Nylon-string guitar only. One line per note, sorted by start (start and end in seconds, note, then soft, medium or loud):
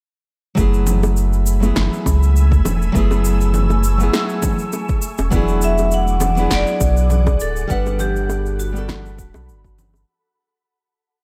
0.55 1.58 F#3 medium
0.55 1.58 A3 medium
0.55 1.59 B3 medium
0.59 1.60 E4 medium
0.59 1.60 G#4 medium
1.60 2.91 F#3 medium
1.60 2.91 A3 medium
1.60 2.92 B3 medium
1.64 2.93 E4 medium
1.64 2.93 G#4 medium
2.92 3.95 F#3 medium
2.92 3.96 A3 medium
2.92 3.96 B3 medium
2.97 3.97 E4 medium
2.97 3.98 G#4 loud
3.98 5.00 F#3 medium
3.98 5.01 A3 medium
3.98 5.02 B3 medium
4.03 5.03 E4 medium
4.03 5.03 G#4 medium
5.30 6.33 F#3 medium
5.30 6.34 B3 medium
5.30 6.34 D4 medium
5.30 6.35 E4 medium
5.36 6.36 G#4 loud
6.35 7.66 F#3 medium
6.35 7.66 B3 medium
6.35 7.67 D4 medium
6.39 7.68 E4 medium
6.39 7.68 G#4 medium
7.67 8.70 G3 medium
7.67 8.71 B3 medium
7.67 8.72 D4 medium
7.67 8.72 F#5 medium
7.73 8.73 A4 loud
8.72 10.03 G3 medium
8.72 10.04 B3 medium
8.72 10.05 D4 medium
8.77 10.05 F#4 medium
8.77 10.06 A4 medium